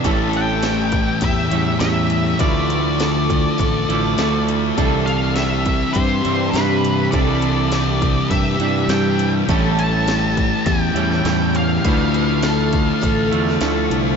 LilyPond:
<<
  \new Staff \with { instrumentName = "Lead electric guitar" } { \time 4/4 \key c \major \tempo 4 = 102 r8 g''4. e''4 e''4 | d''2.~ d''8 r8 | r8 f''8 e''4 c''4 b'4 | d''2 e''4 g''8. r16 |
r8 a''4. g''4. f''8~ | f''2. r4 | }
  \new Staff \with { instrumentName = "Twelve-string acoustic guitar" } { \time 4/4 \key c \major a'4 g'4 g'4 g'4 | b'4 a'4 a'4 a'4 | a'4 g'4 g'4 g'4 | a'4 g'4 g'4 g'4 |
a'4 g'4 g'4 g'4 | b'4 a'4 a'4 a'4 | }
  \new Staff \with { instrumentName = "Clean electric guitar" } { \clef bass \time 4/4 \key c \major <a, e g cis' e'>2~ <a, e g cis' e'>8 <a, e g cis' e'>8 <a, e g cis' e'>4 | <d f a e'>2~ <d f a e'>8 <d f a e'>8 <d f a e'>4 | <c e g d' e'>2~ <c e g d' e'>8 <c e g d' e'>8 <c e g d' e'>4 | <c e g d' e'>2~ <c e g d' e'>8 <c e g d' e'>8 <c e g d' e'>4 |
<a, e g cis' e'>2~ <a, e g cis' e'>8 <a, e g cis' e'>8 <a, e g cis' e'>4 | <d f a e'>2~ <d f a e'>8 <d f a e'>8 <d f a e'>4 | }
  \new Staff \with { instrumentName = "Distorted electric guitar" } { \clef bass \time 4/4 \key c \major <a, e a>1 | <d a d'>1 | <c g c'>1 | <c g c'>1 |
<a, e a>1 | <d a d'>1 | }
  \new Staff \with { instrumentName = "Fingered electric bass" } { \clef bass \time 4/4 \key c \major a,,2 e,8 e,8 e,4 | d,2 a,,8 a,,8 d,4 | c,2 g,8 g,8 g,4 | c,2 g,8 g,8 g,4 |
a,,2 e,8 e,8 e,4 | d,2 a,,8 e,8 d,8 c,8 | }
  \new DrumStaff \with { instrumentName = "Drums" } \drummode { \time 4/4 <hh bd>8 hh8 <hh sn>8 <hh bd>8 <hh bd>8 hh8 <hh sn>8 hh8 | <hh bd>8 hh8 <hh sn>8 <hh bd>8 <hh bd>8 hh8 <hh sn>8 hh8 | <hh bd>8 hh8 <hh sn>8 <hh bd>8 <hh bd>8 hh8 <hh sn>8 hh8 | <hh bd>8 hh8 <hh sn>8 <hh bd>8 <hh bd>8 hh8 <hh sn>8 hh8 |
<hh bd>8 hh8 <hh sn>8 <hh bd>8 <hh bd>8 hh16 sn16 <hh sn>8 hh8 | <hh bd>8 hh8 <hh sn>8 <hh bd>8 <hh bd>8 hh16 sn16 <hh sn>8 hh8 | }
>>